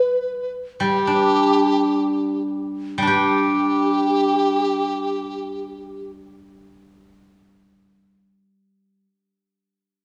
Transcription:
Already playing: xiao B4, dizi B4
0.80 guzheng G3, xiao G4, dizi G4
1.07 guzheng D4
2.98 guzheng G3
3.02 guzheng D4, xiao G4
3.07 guzheng G4, dizi G4

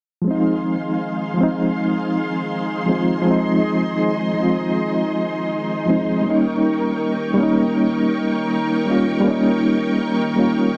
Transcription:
0.22 reed electric piano F3 G#3
0.26 reed electric piano C4, string machine D#4 G#4 F5 C6
0.31 reed electric piano D#4
1.34 reed electric piano F3 G#3
1.40 reed electric piano C4 D#4
2.86 reed electric piano F3 G#3 C4
2.91 reed electric piano F4
3.22 reed electric piano F3 G#3
3.26 reed electric piano C4, string machine D#5
3.31 reed electric piano D#4
4.34 reed electric piano F3 G#3
4.40 reed electric piano C4 F4
5.86 reed electric piano F3 G#3 C4
5.91 reed electric piano D#4
6.21 reed electric piano G3 A#3, string machine G5 C#6
6.26 reed electric piano C#4, string machine A#4
6.30 reed electric piano D#4
7.34 reed electric piano G3 A#3
7.40 reed electric piano C#4 D#4
8.86 reed electric piano G3 A#3 C#4
8.91 reed electric piano F4
9.21 reed electric piano G3 A#3
9.27 reed electric piano C#4 D#4
10.36 reed electric piano G3 A#3 C#4
10.40 reed electric piano F4

